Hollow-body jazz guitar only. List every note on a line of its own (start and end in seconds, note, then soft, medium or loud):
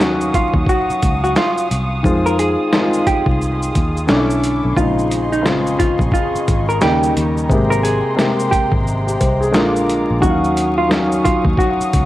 0.35 0.53 F4 medium
0.69 1.20 F#4 medium
1.24 1.35 F#4 medium
1.37 1.67 F4 medium
2.26 2.37 A#4 medium
2.39 2.69 G#4 medium
3.07 3.25 G4 medium
4.77 5.29 F4 medium
5.32 5.44 D#4 medium
5.79 5.98 F4 medium
6.14 6.65 F4 medium
6.69 6.80 A#4 medium
6.82 7.12 G4 medium
7.70 7.82 A#4 medium
7.83 8.14 G#4 medium
8.51 8.70 G4 medium
10.22 10.74 F#4 medium
10.78 10.89 F4 medium
11.24 11.43 F4 medium
11.59 12.05 F#4 medium